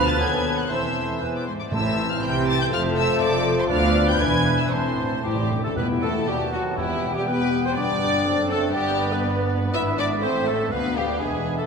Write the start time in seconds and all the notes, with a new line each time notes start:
Already playing: D2 F3 B3 D4 F4 B4 B5
0.07 A5 A6
0.19 D#2 F#3 B3 A4 B4 G#5 A5 G#6
0.57 F#5 F#6
0.69 E1 E2 E3 C4 E4 A4 C5 E5 A5 E6
1.20 E1 E2 E3 B3 E4 G#4 B4 G#5
1.34 D5 D6
1.46 G#2 C5 C6
1.60 D5 D6
1.72 A1 A2 E3 C4 E4 C5 E5 A5 E6
2.10 F5 F6
2.22 C2 C3 C4 G4 G5 G6
2.47 A5 A6
2.60 G5 G6
2.72 F1 F2 F3 A3 F4 A4 F5 A5 F6
2.97 E5 E6
3.22 F1 F2 D5 D6
3.58 C5 C6
3.70 D2 B3 D4 B4 D5 F5 B5 F6
4.08 G5 G6
4.19 E1 E2 E3 D4 E4 B4 G#5 G#6
4.59 E5 E6
4.70 A1 A2 C4 C5 A5 C6
4.79 A2
4.87 A2
4.95 A2
5.04 A2
5.11 A2
5.19 A2
5.24 A1 A2 G3 E4 G4
5.35 A2
5.43 A2
5.51 A2 D4
5.59 A2
5.64 A2 A3 A4
5.76 E1 E2 G3 B3 E4 B4 E5 G5
6.02 A3 A4
6.27 D#2 G3 B3 F#4 G4 A5
6.52 F#3 F#4
6.77 E1 E2 E3 E4 G4 G5
7.15 G3 G4
7.27 B3 B4
7.65 C4 C5
7.76 G1 G2 B3 D4 D5
8.26 F#1 F#2 C4 A4 D5
8.51 A3 A4
8.75 G1 G2 G3 B3 G4 B4
9.12 B3 B4
9.73 G#1 G#2 D4 E4 E5
9.98 D4 D5
10.22 A1 A2 A3 C4 A4 C5 E5
10.47 A3 A4
10.72 D2 B3 D4 B4 F5
10.97 G3 G4
11.20 E1 E2 G#3 G#4 E5
11.57 A3 A4